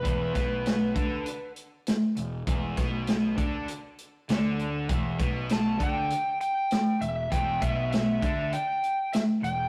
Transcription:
Already playing: electric slide guitar B4
0.03 fingered electric bass E1, overdriven electric guitar E2 E3, kick, closed hi-hat
0.33 fingered electric bass B1, overdriven electric guitar B2 B3, kick, snare, closed hi-hat
0.66 snare, closed hi-hat
0.95 fingered electric bass D2, overdriven electric guitar D3 D4, kick, closed hi-hat
1.26 closed hi-hat
1.56 closed hi-hat
1.87 snare, closed hi-hat
2.17 fingered electric bass E1, overdriven electric guitar E2, closed hi-hat
2.47 fingered electric bass E1, overdriven electric guitar E2 E3, kick, closed hi-hat
2.77 fingered electric bass B1, overdriven electric guitar B2 B3, kick, snare, closed hi-hat
3.07 snare, closed hi-hat
3.36 fingered electric bass D2, overdriven electric guitar D3 D4, kick, closed hi-hat
3.68 closed hi-hat
3.98 closed hi-hat
4.29 fingered electric bass D2, overdriven electric guitar D3 D4, snare, closed hi-hat
4.59 closed hi-hat
4.89 fingered electric bass E1, overdriven electric guitar E2 E3, kick, closed hi-hat
5.18 fingered electric bass B1, overdriven electric guitar B2 B3, kick, closed hi-hat
5.49 electric slide guitar A5, snare, closed hi-hat
5.78 fingered electric bass D2, overdriven electric guitar D3 D4, kick, closed hi-hat
5.83 electric slide guitar G5
6.10 closed hi-hat
6.41 electric slide guitar G5, closed hi-hat
6.71 snare, closed hi-hat
7.01 fingered electric bass E1, overdriven electric guitar E2, electric slide guitar E5, closed hi-hat
7.30 fingered electric bass E1, overdriven electric guitar E2 E3, electric slide guitar G5, kick, closed hi-hat
7.60 fingered electric bass B1, overdriven electric guitar B2 B3, electric slide guitar E5, kick, closed hi-hat
7.92 electric slide guitar E5, snare, closed hi-hat
8.21 fingered electric bass D2, overdriven electric guitar D3 D4, kick, closed hi-hat
8.53 electric slide guitar G5, closed hi-hat
8.83 closed hi-hat
9.13 electric slide guitar E5, snare, closed hi-hat
9.43 fingered electric bass E1, overdriven electric guitar E2, electric slide guitar G5, closed hi-hat

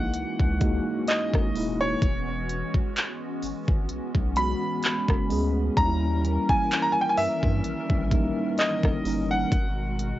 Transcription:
Already playing: analog synth bass A#1, analog synth pad E3 G#3 A#3 F#4 D#5, tine electric piano G#3 A#3 D#4 E4, grand piano F#5
0.14 analog synth bass C#2, analog synth pad C#4, closed hi-hat
0.40 analog synth bass C#2, kick
0.60 tine electric piano G#3 A#3 D#4 F#4, kick, closed hi-hat
1.08 grand piano D#5, clap, closed hi-hat
1.33 analog synth bass G#1, kick, cross-stick
1.54 analog synth bass D#1, tine electric piano G#3 A#3 D#4 E4, open hi-hat
1.81 grand piano C#5
2.02 analog synth bass E1, analog synth pad B3 C#4, kick, closed hi-hat
2.49 closed hi-hat
2.74 kick
2.96 clap, closed hi-hat
3.42 analog synth bass G#1, open hi-hat
3.68 analog synth bass G#1, kick
3.89 analog synth bass B1, closed hi-hat
4.15 analog synth bass B1, kick
4.36 tine electric piano G#3 B3 C#4 F#4, grand piano B5, closed hi-hat
4.83 clap, closed hi-hat
5.08 analog synth bass F#1, kick, cross-stick
5.29 analog synth bass D2, tine electric piano G#3 B3 C#4 G#4, open hi-hat
5.76 analog synth bass D#2, analog synth pad D#3 E3 G3 A#4, tine electric piano G3 A#3 C#4 D#4, grand piano A#5, kick, closed hi-hat
5.86 tine electric piano E4
6.25 closed hi-hat
6.49 grand piano G#5, kick
6.71 clap, closed hi-hat
6.82 grand piano A#5
6.92 grand piano G#5
7.01 grand piano G5
7.09 grand piano G#5
7.17 analog synth bass G2, grand piano E5, open hi-hat
7.43 analog synth bass G2, kick
7.64 analog synth bass A#1, closed hi-hat
7.90 analog synth bass A#1, kick
8.11 tine electric piano G3 A#3 C#4 D#4, kick, closed hi-hat
8.58 grand piano D#5, clap, closed hi-hat
8.83 analog synth bass G1, kick, cross-stick
9.04 analog synth bass G1, tine electric piano G3 A#3 C#4 D#4, open hi-hat
9.31 grand piano F#5
9.52 analog synth bass G#1, analog synth pad B2 G#3 F#4, kick, closed hi-hat
9.99 closed hi-hat

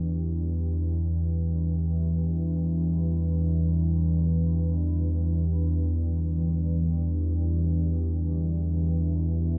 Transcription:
Already playing: synth drone E2 E3, ambient pad D4 E4 G4 B4
8.50 ambient pad D4

